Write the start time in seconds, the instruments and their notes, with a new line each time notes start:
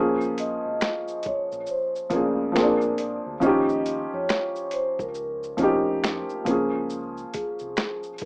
Already playing: fingered electric bass A#1, felt piano F3 A#3 C#4
0.00 felt piano G#4
0.21 shaker
0.38 vibraphone D#5, closed hi-hat, shaker
0.65 fingered electric bass G#1
0.81 finger snap, snare, shaker
1.08 shaker
1.23 vibraphone C#5, kick, closed hi-hat, shaker
1.52 fingered electric bass A#1, shaker
1.67 vibraphone C5, shaker
1.95 shaker
2.10 fingered electric bass C#2, felt piano F3 A#3, vibraphone D5, kick, closed hi-hat, shaker
2.14 felt piano C#3 G#4
2.52 fingered electric bass A#1, felt piano F3 A#3, finger snap
2.56 felt piano C4 G#4, vibraphone A#4, snare, shaker
2.63 felt piano D4
2.81 shaker
2.98 vibraphone D5, closed hi-hat, shaker
3.26 fingered electric bass D2
3.40 fingered electric bass D#2, felt piano F3 C#4, vibraphone D#5, kick, shaker
3.44 felt piano D#4 G4
3.69 shaker
3.86 closed hi-hat, shaker
4.13 fingered electric bass F2, vibraphone C#5
4.29 finger snap, snare, shaker
4.56 shaker
4.71 vibraphone C5, closed hi-hat, shaker
4.99 fingered electric bass C#2, vibraphone A#4, kick, shaker
5.15 shaker
5.43 shaker
5.57 fingered electric bass F2, felt piano F3 C#4, kick, closed hi-hat, shaker
5.61 felt piano D#4 G4
6.04 finger snap, snare, shaker
6.29 shaker
6.45 fingered electric bass C#2, felt piano F3 A#3, kick, closed hi-hat, shaker
6.49 felt piano C#4 G#4
6.90 shaker
7.17 shaker
7.34 vibraphone G#4, kick, closed hi-hat, shaker
7.59 fingered electric bass C2, shaker
7.77 finger snap, snare, shaker
8.03 shaker
8.18 vibraphone A#4, kick, closed hi-hat, shaker